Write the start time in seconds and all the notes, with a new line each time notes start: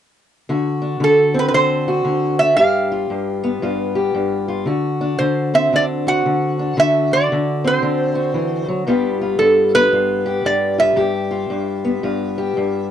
0.49 D3 F#4
0.82 D4
1.00 D3 A4
1.34 C4
1.39 B4
1.48 B4
1.54 D3 D4 C5
1.88 F#4
2.05 D3
2.39 D4 E5
2.57 G2 G4 F5
2.92 F4
3.10 G2
3.44 B3
3.62 G2 F4
3.95 G4
4.15 G2
4.48 F4
4.66 D3 F#4
5.01 D4
5.19 D3 C5
5.54 C4 E5
5.73 D3 D4 D5
6.07 F#4 F#5
6.26 D3
6.59 D4
6.77 D3 F#4 E5
7.13 D4 D5
7.32 D3
7.64 C4 C5
7.82 D3 D4
8.15 F#4
8.34 E3
8.68 F#3
8.87 G2 G3 B3 F4 G4
9.21 F4
9.39 G2 A4
9.75 B3 B4
9.92 G2 F4
10.26 G4
10.45 G2 D5
10.78 F4 E5
10.96 G2 G4
11.31 F4
11.50 G2
11.85 B3
12.03 G2 F4
12.38 G4
12.57 G2